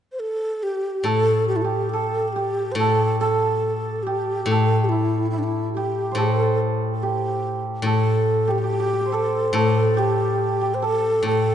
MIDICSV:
0, 0, Header, 1, 4, 480
1, 0, Start_track
1, 0, Tempo, 854701
1, 596, Time_signature, 4, 2, 24, 8
1, 2998, Tempo, 845070
1, 6525, End_track
2, 0, Start_track
2, 0, Title_t, "Xiao"
2, 0, Program_c, 0, 77
2, 70, Note_on_c, 0, 72, 56
2, 114, Note_on_c, 0, 69, 69
2, 122, Note_off_c, 0, 72, 0
2, 354, Note_on_c, 0, 67, 71
2, 362, Note_off_c, 0, 69, 0
2, 601, Note_on_c, 0, 69, 78
2, 609, Note_off_c, 0, 67, 0
2, 828, Note_off_c, 0, 69, 0
2, 831, Note_on_c, 0, 67, 74
2, 877, Note_on_c, 0, 64, 63
2, 885, Note_off_c, 0, 67, 0
2, 911, Note_on_c, 0, 67, 66
2, 919, Note_off_c, 0, 64, 0
2, 1064, Note_on_c, 0, 69, 74
2, 1073, Note_off_c, 0, 67, 0
2, 1279, Note_off_c, 0, 69, 0
2, 1279, Note_on_c, 0, 69, 47
2, 1307, Note_on_c, 0, 67, 77
2, 1315, Note_off_c, 0, 69, 0
2, 1526, Note_on_c, 0, 72, 60
2, 1534, Note_off_c, 0, 67, 0
2, 1552, Note_on_c, 0, 69, 79
2, 1560, Note_off_c, 0, 72, 0
2, 1792, Note_off_c, 0, 69, 0
2, 1796, Note_on_c, 0, 69, 76
2, 2264, Note_on_c, 0, 67, 70
2, 2272, Note_off_c, 0, 69, 0
2, 2508, Note_on_c, 0, 69, 81
2, 2517, Note_off_c, 0, 67, 0
2, 2720, Note_on_c, 0, 67, 52
2, 2728, Note_off_c, 0, 69, 0
2, 2747, Note_on_c, 0, 64, 66
2, 2756, Note_off_c, 0, 67, 0
2, 2975, Note_off_c, 0, 64, 0
2, 2978, Note_on_c, 0, 64, 70
2, 3025, Note_on_c, 0, 62, 52
2, 3033, Note_off_c, 0, 64, 0
2, 3053, Note_on_c, 0, 64, 69
2, 3061, Note_off_c, 0, 62, 0
2, 3215, Note_off_c, 0, 64, 0
2, 3218, Note_on_c, 0, 67, 70
2, 3464, Note_on_c, 0, 69, 72
2, 3473, Note_off_c, 0, 67, 0
2, 3707, Note_off_c, 0, 69, 0
2, 3908, Note_on_c, 0, 69, 46
2, 3958, Note_on_c, 0, 67, 63
2, 3966, Note_off_c, 0, 69, 0
2, 4312, Note_off_c, 0, 67, 0
2, 4436, Note_on_c, 0, 69, 70
2, 4799, Note_on_c, 0, 67, 78
2, 4808, Note_off_c, 0, 69, 0
2, 5158, Note_on_c, 0, 69, 74
2, 5167, Note_off_c, 0, 67, 0
2, 5392, Note_off_c, 0, 69, 0
2, 5395, Note_on_c, 0, 69, 81
2, 5638, Note_on_c, 0, 67, 74
2, 5646, Note_off_c, 0, 69, 0
2, 6068, Note_on_c, 0, 72, 56
2, 6076, Note_off_c, 0, 67, 0
2, 6124, Note_on_c, 0, 69, 77
2, 6133, Note_off_c, 0, 72, 0
2, 6363, Note_off_c, 0, 69, 0
2, 6373, Note_on_c, 0, 69, 80
2, 6525, Note_off_c, 0, 69, 0
2, 6525, End_track
3, 0, Start_track
3, 0, Title_t, "Hammered dulcimer"
3, 0, Program_c, 1, 15
3, 587, Note_on_c, 1, 69, 67
3, 923, Note_on_c, 1, 67, 61
3, 1084, Note_off_c, 1, 69, 0
3, 1086, Note_on_c, 1, 69, 64
3, 1322, Note_off_c, 1, 67, 0
3, 1324, Note_on_c, 1, 67, 57
3, 1569, Note_off_c, 1, 69, 0
3, 1571, Note_on_c, 1, 69, 76
3, 1800, Note_off_c, 1, 69, 0
3, 1802, Note_on_c, 1, 69, 74
3, 2281, Note_off_c, 1, 67, 0
3, 2283, Note_on_c, 1, 67, 67
3, 2530, Note_off_c, 1, 69, 0
3, 2532, Note_on_c, 1, 69, 64
3, 2761, Note_on_c, 1, 64, 46
3, 2992, Note_off_c, 1, 64, 0
3, 2994, Note_on_c, 1, 64, 49
3, 3239, Note_off_c, 1, 67, 0
3, 3241, Note_on_c, 1, 67, 60
3, 3439, Note_on_c, 1, 72, 48
3, 3470, Note_off_c, 1, 69, 0
3, 3472, Note_on_c, 1, 69, 68
3, 3957, Note_off_c, 1, 67, 0
3, 3959, Note_on_c, 1, 67, 57
3, 4428, Note_off_c, 1, 69, 0
3, 4430, Note_on_c, 1, 69, 68
3, 4778, Note_off_c, 1, 67, 0
3, 4781, Note_on_c, 1, 67, 65
3, 4837, Note_off_c, 1, 67, 0
3, 4839, Note_on_c, 1, 67, 45
3, 4869, Note_off_c, 1, 67, 0
3, 4872, Note_on_c, 1, 67, 52
3, 4919, Note_off_c, 1, 67, 0
3, 4921, Note_on_c, 1, 67, 44
3, 4941, Note_off_c, 1, 72, 0
3, 4960, Note_off_c, 1, 67, 0
3, 4963, Note_on_c, 1, 67, 49
3, 4971, Note_off_c, 1, 64, 0
3, 4994, Note_off_c, 1, 67, 0
3, 4996, Note_on_c, 1, 67, 40
3, 5036, Note_off_c, 1, 67, 0
3, 5038, Note_on_c, 1, 67, 53
3, 5081, Note_off_c, 1, 67, 0
3, 5083, Note_on_c, 1, 67, 42
3, 5109, Note_on_c, 1, 72, 44
3, 5144, Note_off_c, 1, 69, 0
3, 5147, Note_on_c, 1, 69, 66
3, 5383, Note_off_c, 1, 69, 0
3, 5385, Note_on_c, 1, 69, 76
3, 5626, Note_off_c, 1, 67, 0
3, 5628, Note_on_c, 1, 67, 72
3, 5992, Note_off_c, 1, 67, 0
3, 5994, Note_on_c, 1, 67, 58
3, 6111, Note_off_c, 1, 69, 0
3, 6113, Note_on_c, 1, 69, 65
3, 6358, Note_off_c, 1, 69, 0
3, 6361, Note_on_c, 1, 69, 59
3, 6525, Note_off_c, 1, 67, 0
3, 6525, Note_off_c, 1, 69, 0
3, 6525, Note_off_c, 1, 72, 0
3, 6525, End_track
4, 0, Start_track
4, 0, Title_t, "Guzheng"
4, 0, Program_c, 2, 107
4, 582, Note_on_c, 2, 45, 43
4, 1537, Note_off_c, 2, 45, 0
4, 1544, Note_on_c, 2, 45, 52
4, 2496, Note_off_c, 2, 45, 0
4, 2503, Note_on_c, 2, 45, 55
4, 3451, Note_off_c, 2, 45, 0
4, 3458, Note_on_c, 2, 45, 55
4, 4402, Note_off_c, 2, 45, 0
4, 4409, Note_on_c, 2, 45, 55
4, 5371, Note_off_c, 2, 45, 0
4, 5378, Note_on_c, 2, 45, 57
4, 6335, Note_off_c, 2, 45, 0
4, 6342, Note_on_c, 2, 45, 49
4, 6525, Note_off_c, 2, 45, 0
4, 6525, End_track
0, 0, End_of_file